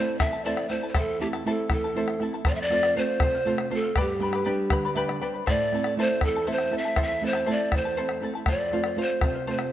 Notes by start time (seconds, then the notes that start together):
Already playing: A3 C4 E4 A4 C5 E5 A5
0.19 E2 E4 A4 E5 A5, bombo rim, bombo low
0.33 E4 A4 A5
0.45 A3 C4 E4 A4 C5 D5 E5 A5
0.57 bombo rim
0.69 A3 C4 E4 A4 C5 E5 A5, bombo rim
0.83 E4 A4 A5
0.89 C5
0.94 E2 E4 A4 C5 E5 A5, bombo rim, bombo low
1.20 A3 C4 E4 G4 A4 E5 A5
1.33 E4 A4 A5, bombo rim
1.45 A3 C4 E4 A4 C5 E5 A5
1.49 A4
1.70 E2 E4 A4 E5 A5, bombo rim, bombo low
1.84 E4 A4 A5
1.95 A3 C4 E4 A4 C5 E5 A5
2.08 bombo rim
2.19 A3 C4 E4 A4 E5 A5, bombo rim
2.33 E4 A4 A5, bombo rim
2.45 F2 A4 C5 D5 F5, bombo rim, bombo low
2.55 E5
2.61 D5
2.70 A3 C4 F4 A4 C5 F5, bombo rim
2.83 C5 F5, bombo rim
2.95 A3 C4 F4 A4 C5 F5
3.20 C3 A4 C5 F5, bombo rim, bombo low
3.34 C5 F5
3.45 A3 C4 F4 A4 C5 F5
3.58 bombo rim
3.70 A3 C4 F4 A4 C5 F5, bombo rim
3.75 A4
3.84 C5 F5
3.95 G2 G4 B4 D5 G5 B5, bombo rim, bombo low
4.00 G4
4.19 G3 B3 D4 B4 D5 G5, bombo rim
4.23 B5
4.33 B4 D5 B5, bombo rim
4.45 G3 B3 D4 G4 B4 D5 G5 B5
4.70 D3 B4 D5 G5 B5, bombo rim, bombo low
4.85 B4 D5 B5
4.95 G3 B3 D4 G4 B4 D5 E5 G5 B5
5.08 D5, bombo rim
5.21 G3 B3 D4 B4 C5 D5 G5 B5, bombo rim
5.34 B4 D5 B5
5.46 A2 E4 A4 C5 D5 E5 A5, bombo rim, bombo low
5.72 A3 C4 E4 A4 E5 A5, bombo rim
5.84 E4 A4 A5, bombo rim
5.97 A3 C4 E4 A4 C5 E5 A5
6.21 E2 E4 A4 E5 A5, bombo rim, bombo low
6.36 E4 A4 A5
6.47 A3 C4 E4 A4 C5 E5 A5
6.52 C5
6.58 bombo rim
6.71 A3 C4 E4 A4 E5 A5, bombo rim
6.78 E5
6.85 E4 A4 A5
6.96 E2 E4 A4 C5 E5 A5, bombo rim, bombo low
7.02 E5
7.08 bombo rim
7.21 A3 C4 E4 A4 E5 A5
7.26 C5
7.33 E4 A4 A5, bombo rim
7.46 A3 C4 E4 A4 C5 E5 A5, bombo rim
7.51 D5
7.72 E2 E4 A4 E5 A5, bombo rim, bombo low
7.77 C5
7.85 E4 A4 A5
7.97 A3 C4 E4 A4 C5 E5 A5
8.09 bombo rim
8.21 A3 C4 E4 A4 E5 A5
8.34 E4 A4 A5, bombo rim
8.46 F2 A4 C5 F5, bombo rim, bombo low
8.51 D5
8.71 A3 C4 F4 A4 C5 F5, bombo rim
8.84 C5 F5, bombo rim
8.97 A3 C4 F4 A4 C5 F5
9.01 C5
9.21 C3 A4 C5 F5, bombo rim, bombo low
9.34 C5 F5
9.47 A3 C4 F4 A4 C5 F5
9.59 bombo rim